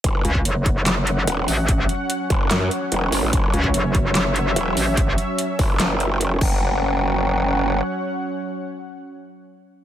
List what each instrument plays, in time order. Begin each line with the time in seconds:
0.04 wobble bass F#1, analog synth pad F#3 C#4 C#5 F#5, kick, closed hi-hat
0.25 wobble bass C#2, closed hi-hat
0.35 kick
0.45 wobble bass F#1, closed hi-hat
0.66 kick, closed hi-hat
0.86 snare, clap, closed hi-hat
1.07 closed hi-hat
1.27 wobble bass E1, closed hi-hat
1.48 wobble bass A1, open hi-hat
1.69 kick, closed hi-hat
1.89 closed hi-hat
2.10 closed hi-hat
2.30 wobble bass F#1, kick, closed hi-hat
2.51 wobble bass F#2, snare, clap, closed hi-hat
2.71 closed hi-hat
2.92 wobble bass E1, closed hi-hat
3.12 wobble bass F#1, open hi-hat
3.23 wobble bass A1
3.33 wobble bass F#1, analog synth pad E5, kick, closed hi-hat
3.54 wobble bass C#2, closed hi-hat
3.64 kick
3.74 wobble bass F#1, closed hi-hat
3.95 kick, closed hi-hat
4.15 snare, clap, closed hi-hat
4.36 closed hi-hat
4.56 wobble bass E1, closed hi-hat
4.77 wobble bass A1, open hi-hat
4.97 kick, closed hi-hat
5.18 closed hi-hat
5.38 closed hi-hat
5.59 wobble bass F#1, kick, open hi-hat
5.80 wobble bass F#1, snare, clap, closed hi-hat
6.00 closed hi-hat
6.21 wobble bass F1, closed hi-hat
6.41 wobble bass F#1, analog synth pad F#3 C#4 C#5 F#5, kick, crash